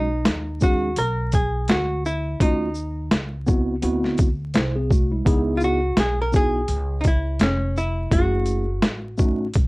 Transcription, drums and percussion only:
0.25 snare, closed hi-hat
0.61 kick, shaker
0.96 closed hi-hat
1.32 kick, closed hi-hat, shaker
1.68 snare, closed hi-hat
2.05 shaker
2.40 kick, closed hi-hat
2.75 shaker
3.11 snare, closed hi-hat
3.47 kick, shaker
3.83 closed hi-hat
4.04 snare
4.18 kick, closed hi-hat, shaker
4.54 snare, closed hi-hat
4.91 kick, shaker
5.26 kick, closed hi-hat
5.60 shaker
5.97 snare, closed hi-hat
6.32 kick, shaker
6.68 closed hi-hat
7.04 kick, closed hi-hat, shaker
7.39 snare, closed hi-hat
7.77 shaker
8.12 kick, closed hi-hat
8.46 closed hi-hat, shaker
8.82 snare, closed hi-hat
9.18 kick, shaker
9.54 kick, closed hi-hat

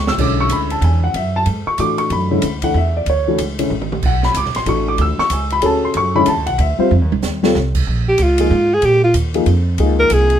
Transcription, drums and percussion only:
0.07 snare
0.18 kick, crash
0.49 hi-hat pedal, ride
0.70 ride
0.82 ride
1.14 ride
1.46 ride
1.78 hi-hat pedal, ride
1.98 ride
2.10 ride
2.42 hi-hat pedal, ride
2.62 kick, ride
3.06 ride
3.38 hi-hat pedal, ride
3.59 ride
3.71 mid tom
3.82 mid tom
3.92 mid tom
4.03 kick, crash
4.23 snare
4.34 hi-hat pedal, ride
4.45 snare
4.55 snare, ride
4.66 ride
4.98 ride
5.19 snare
5.30 hi-hat pedal, ride
5.50 ride
5.62 ride
5.94 ride
6.26 hi-hat pedal, ride
6.47 ride
6.59 ride
6.91 high tom
7.12 high tom
7.22 snare, hi-hat pedal
7.44 snare
7.55 snare
7.75 kick, crash
8.18 hi-hat pedal, ride
8.38 ride
8.82 ride
9.14 hi-hat pedal, ride
9.34 ride
9.46 ride
9.78 ride
10.10 hi-hat pedal, ride
10.30 ride

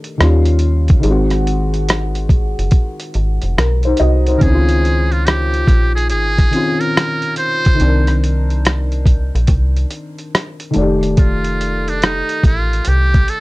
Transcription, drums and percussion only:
0.04 closed hi-hat
0.21 cross-stick, closed hi-hat
0.45 closed hi-hat
0.59 closed hi-hat
0.88 kick, closed hi-hat
1.03 closed hi-hat
1.30 cross-stick, closed hi-hat
1.47 closed hi-hat
1.74 closed hi-hat
1.89 cross-stick, closed hi-hat
2.15 closed hi-hat
2.29 kick, closed hi-hat
2.59 closed hi-hat
2.71 kick, closed hi-hat
3.00 closed hi-hat
3.14 closed hi-hat
3.42 closed hi-hat
3.58 cross-stick, closed hi-hat
3.83 closed hi-hat
3.97 closed hi-hat
4.27 closed hi-hat
4.41 kick, closed hi-hat
4.69 closed hi-hat
4.85 closed hi-hat
5.12 closed hi-hat
5.27 cross-stick, closed hi-hat
5.54 closed hi-hat
5.67 kick, closed hi-hat
5.97 closed hi-hat
6.09 closed hi-hat
6.38 kick, closed hi-hat
6.53 closed hi-hat
6.81 closed hi-hat
6.97 cross-stick, closed hi-hat
7.22 closed hi-hat
7.36 closed hi-hat
7.65 kick, closed hi-hat
7.80 closed hi-hat
8.07 cross-stick, closed hi-hat
8.24 closed hi-hat
8.50 closed hi-hat
8.65 cross-stick, closed hi-hat
8.92 closed hi-hat
9.06 kick, closed hi-hat
9.35 closed hi-hat
9.47 kick, closed hi-hat
9.77 closed hi-hat
9.91 closed hi-hat
10.18 closed hi-hat
10.35 cross-stick, closed hi-hat
10.60 closed hi-hat
10.74 closed hi-hat
11.03 closed hi-hat
11.17 kick, closed hi-hat
11.44 closed hi-hat
11.61 closed hi-hat
11.88 closed hi-hat
12.02 cross-stick, closed hi-hat
12.29 closed hi-hat
12.43 kick, closed hi-hat
12.73 closed hi-hat
12.85 closed hi-hat
13.14 kick, closed hi-hat
13.28 closed hi-hat

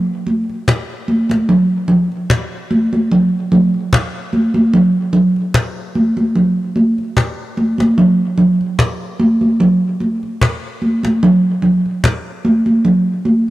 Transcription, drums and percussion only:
0.27 cajon slap, high conga
0.49 cajon slap
0.68 cajon bass, cajon slap
1.08 cajon slap, high conga
1.29 cajon slap, high conga
1.49 cajon slap, low conga
1.88 cajon slap, low conga
2.12 cajon slap
2.30 cajon bass, cajon slap
2.71 high conga
2.93 cajon slap, high conga
3.11 cajon slap, low conga
3.52 cajon slap, high conga, low conga
3.74 cajon slap
3.93 cajon bass, cajon slap
4.33 cajon slap, high conga
4.54 cajon slap, high conga
4.73 cajon slap, low conga
5.13 cajon slap, low conga
5.36 cajon slap
5.54 cajon bass, cajon slap
5.95 cajon slap, high conga
6.17 cajon slap, high conga
6.35 cajon slap, low conga
6.76 cajon slap, high conga
6.98 cajon slap
7.17 cajon bass, cajon slap
7.57 cajon slap, high conga
7.78 cajon slap, high conga
7.98 cajon slap, low conga
8.38 cajon slap, low conga
8.61 cajon slap
8.79 cajon bass, cajon slap
9.20 high conga
9.41 cajon slap, high conga
9.60 cajon slap, low conga
10.00 cajon slap, high conga
10.23 cajon slap
10.41 cajon bass, cajon slap
10.82 cajon slap, high conga
11.03 cajon slap, high conga
11.23 cajon slap, low conga
11.62 cajon slap, low conga
11.86 cajon slap
12.04 cajon bass, cajon slap
12.45 high conga
12.66 cajon slap, high conga
12.85 cajon slap, low conga
13.25 cajon slap, high conga

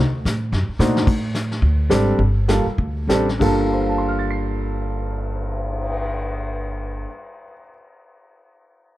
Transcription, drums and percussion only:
0.25 kick, snare, hi-hat pedal
0.53 brush sweep, kick, snare
0.80 snare, hi-hat pedal
0.96 snare
1.07 brush sweep, kick, crash
1.35 snare, hi-hat pedal
1.51 snare
1.62 brush sweep, kick
1.91 snare, hi-hat pedal
2.19 brush sweep, kick
2.48 snare, hi-hat pedal
2.78 brush sweep, kick
3.09 snare, hi-hat pedal
3.29 snare
3.41 kick, crash
3.61 cymbal swell

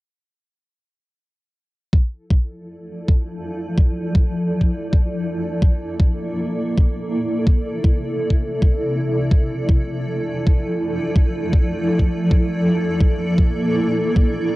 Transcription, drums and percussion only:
1.93 kick
2.30 kick
3.08 kick
3.78 kick
4.15 kick
4.61 kick
4.93 kick
5.62 kick
6.00 kick
6.77 kick
7.47 kick
7.84 kick
8.30 kick
8.62 kick
9.31 kick
9.69 kick
10.47 kick
11.16 kick
11.53 kick
12.00 kick
12.31 kick
13.01 kick
13.38 kick
14.16 kick

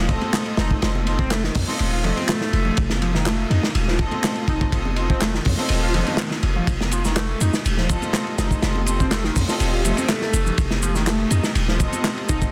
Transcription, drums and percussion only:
0.09 kick, ride
0.21 ride, high conga
0.33 snare, clap, ride
0.46 ride
0.57 snare, ride
0.71 kick
0.82 snare, ride
0.95 high conga
1.07 ride
1.19 kick
1.30 snare, clap, ride
1.44 snare
1.55 kick, open hi-hat, high conga
1.68 snare
1.79 ride
2.04 ride, low conga
2.17 ride, high conga
2.28 snare, clap, ride
2.41 snare
2.53 ride
2.65 low conga
2.77 kick, ride
2.90 snare, high conga
3.02 ride
3.15 snare
3.26 snare, clap, ride
3.51 ride, high conga
3.63 snare
3.75 ride
3.88 snare
3.99 kick, ride
4.11 ride, high conga
4.24 snare, clap, ride
4.36 ride
4.48 kick, ride
4.61 kick
4.72 kick, ride
4.85 high conga
4.96 ride
5.10 kick
5.21 snare, clap, ride
5.34 snare
5.45 kick, open hi-hat, high conga
5.57 snare
5.69 ride
5.94 ride, low conga
6.07 ride, high conga
6.17 snare, clap, ride
6.31 snare
6.43 ride
6.56 low conga
6.67 kick, ride, shaker
6.80 snare, high conga
6.91 ride, shaker
7.05 snare, shaker
7.16 snare, clap, ride, shaker
7.41 ride, high conga, shaker
7.53 snare, shaker
7.65 ride, shaker
7.77 snare
7.89 kick, ride, shaker
8.02 ride, high conga, shaker
8.13 snare, clap, ride, shaker
8.27 ride
8.38 snare, ride, shaker
8.51 kick, shaker
8.62 snare, ride, shaker
8.75 high conga
8.86 ride, shaker
9.00 kick, shaker
9.11 snare, clap, ride, shaker
9.24 snare
9.36 kick, open hi-hat, high conga, shaker
9.48 snare, shaker
9.60 ride, shaker
9.85 ride, low conga, shaker
9.97 ride, high conga, shaker
10.09 snare, clap, ride, shaker
10.22 snare
10.33 ride, shaker
10.46 low conga, shaker
10.58 kick, ride, shaker
10.71 snare, high conga
10.83 ride, shaker
10.95 snare, shaker
11.07 snare, clap, ride, shaker
11.31 ride, high conga, shaker
11.43 snare, shaker
11.55 ride, shaker
11.68 snare
11.80 kick, ride, shaker
11.92 ride, high conga, shaker
12.04 snare, clap, ride, shaker
12.18 ride
12.29 kick, ride, shaker
12.42 kick, shaker

